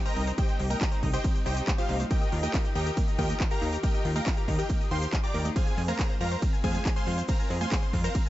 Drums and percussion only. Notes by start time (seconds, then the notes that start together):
0.06 shaker
0.17 open hi-hat
0.27 closed hi-hat, shaker
0.38 kick, closed hi-hat, ride, shaker
0.48 shaker
0.60 open hi-hat
0.70 closed hi-hat, high conga, shaker
0.81 kick, clap, closed hi-hat, ride, shaker
0.92 shaker
1.03 kick, open hi-hat
1.13 closed hi-hat, shaker
1.24 kick, closed hi-hat, ride, shaker
1.35 shaker
1.46 open hi-hat
1.57 closed hi-hat, shaker
1.68 kick, clap, closed hi-hat, ride, shaker
1.78 shaker
1.89 open hi-hat, high conga
2.00 closed hi-hat, high conga, shaker
2.11 kick, closed hi-hat, ride, shaker
2.22 shaker
2.32 open hi-hat
2.43 closed hi-hat, high conga, shaker
2.54 kick, clap, closed hi-hat, ride, shaker
2.65 shaker
2.75 open hi-hat
2.86 closed hi-hat, shaker
2.97 kick, closed hi-hat, ride, shaker
3.08 shaker
3.19 kick, open hi-hat, high conga
3.29 closed hi-hat, shaker
3.40 kick, clap, closed hi-hat, ride, shaker
3.50 shaker
3.62 open hi-hat
3.73 closed hi-hat, shaker
3.83 kick, closed hi-hat, ride, shaker
3.94 shaker
4.05 open hi-hat
4.16 closed hi-hat, high conga, shaker
4.26 kick, clap, closed hi-hat, ride, shaker
4.37 shaker
4.48 kick, open hi-hat
4.59 closed hi-hat, shaker
4.69 kick, closed hi-hat, ride, shaker
4.81 shaker
4.91 open hi-hat
5.02 closed hi-hat, shaker
5.13 kick, clap, closed hi-hat, ride, shaker
5.24 shaker
5.34 open hi-hat, high conga
5.45 closed hi-hat, high conga, shaker
5.56 kick, closed hi-hat, ride, shaker
5.67 shaker
5.78 open hi-hat
5.88 closed hi-hat, high conga, shaker
5.99 kick, clap, closed hi-hat, ride, shaker
6.09 shaker
6.21 open hi-hat
6.31 closed hi-hat, shaker
6.42 kick, closed hi-hat, ride, shaker
6.54 shaker
6.64 kick, open hi-hat, high conga
6.75 closed hi-hat, shaker
6.85 kick, clap, closed hi-hat, ride, shaker
6.96 shaker
7.07 open hi-hat
7.18 closed hi-hat, shaker
7.28 kick, closed hi-hat, ride, shaker
7.40 shaker
7.50 open hi-hat
7.61 closed hi-hat, high conga, shaker
7.72 kick, clap, closed hi-hat, ride, shaker
7.82 shaker
7.93 kick, open hi-hat
8.04 closed hi-hat, shaker
8.14 kick, closed hi-hat, ride, shaker